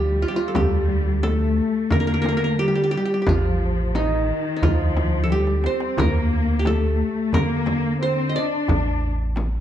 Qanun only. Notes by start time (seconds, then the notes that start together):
Already playing: D#4 F4 G4
0.22 F4
0.28 G4
0.36 F4
0.48 A4
0.56 G4
1.23 A4
1.92 A#4
2.00 A#4
2.07 A#4
2.14 A#4
2.22 A#4
2.29 A#4
2.37 A#4
2.44 A#4
2.59 G4
2.68 G4
2.75 G4
2.84 G4
2.91 G4
2.97 G4
3.05 G4
3.14 G4
3.22 G4
3.29 F4
3.96 D#4
4.56 D#4
4.63 F4
5.24 A4
5.32 G4
5.66 C5
5.99 A#4
6.59 G4
6.67 A4
7.34 A#4
8.02 C5
8.29 D#5
8.36 D5